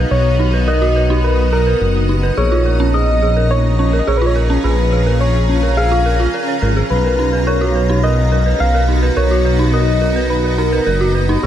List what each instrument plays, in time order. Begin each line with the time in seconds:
Already playing: ambient pad B3 D#4 F#4 D#5 A#5
0.11 detuned saw bass B1, soft synth lead C#5
0.39 synth bell D#4
0.53 synth bell B4
0.68 synth bell A#4, soft synth lead D#5
0.82 synth bell F#4
0.96 synth bell B4
1.10 synth bell D#4
1.24 synth bell A#4, soft synth lead B4
1.53 synth bell A#4, soft synth lead A#4
1.67 synth bell B4
1.81 detuned saw bass F#1
2.09 synth bell D#4
2.23 synth bell B4
2.37 detuned saw bass A#1, ambient pad C#4, synth bell G#4, soft synth lead C#5
2.52 synth bell F4
2.66 ambient pad G#4, synth bell A#4
2.73 ambient pad F4
2.80 synth bell C#4
2.94 synth bell G#4, soft synth lead D#5
3.22 synth bell G#4
3.37 synth bell A#4
3.51 soft synth lead C#5
3.79 synth bell C#4, soft synth lead C#5
3.93 synth bell A#4
3.99 soft synth lead D#5
4.07 detuned saw bass A#1, synth bell G#4, soft synth lead C#5
4.14 soft synth lead B4, ambient pad F5
4.21 synth bell F4
4.27 soft synth lead C#5
4.36 synth bell A#4
4.50 synth bell C#4
4.64 detuned saw bass A#1, synth bell G#4, soft synth lead B4
4.92 synth bell G#4
5.06 synth bell A#4
5.21 soft synth lead C#5
5.49 synth bell C#4
5.63 synth bell A#4
5.77 synth bell G#4, soft synth lead F5
5.91 synth bell F4
6.06 synth bell A#4
6.20 synth bell F4
6.34 synth bell A#4
6.48 synth bell C#5
6.62 detuned saw bass G#1, synth bell A#4
6.76 synth bell G#4
6.90 detuned saw bass B1, ambient pad B3, soft synth lead B4
7.05 synth bell A#4
7.16 ambient pad D#4, synth bell D#4
7.33 ambient pad F#4, synth bell B4
7.47 synth bell A#4, soft synth lead C#5
7.61 synth bell F#4
7.75 synth bell B4
7.89 synth bell D#4
8.03 synth bell A#4, soft synth lead D#5
8.32 synth bell A#4
8.46 synth bell B4
8.60 detuned saw bass B1, soft synth lead F5
8.74 synth bell A#4
8.89 synth bell D#4
8.94 ambient pad D#5
9.03 synth bell B4
9.17 detuned saw bass B1, synth bell A#4, soft synth lead C#5
9.31 synth bell F#4
9.45 synth bell B4
9.59 synth bell D#4
9.73 synth bell A#4, soft synth lead D#5
10.02 synth bell A#4
10.16 synth bell B4
10.30 soft synth lead B4
10.44 synth bell A#4
10.58 synth bell D#4, soft synth lead A#4
10.72 synth bell B4
10.87 detuned saw bass F#1, synth bell A#4
11.01 synth bell F#4
11.15 synth bell B4
11.29 synth bell D#4
11.43 detuned saw bass A#1, ambient pad C#4, synth bell G#4, soft synth lead C#5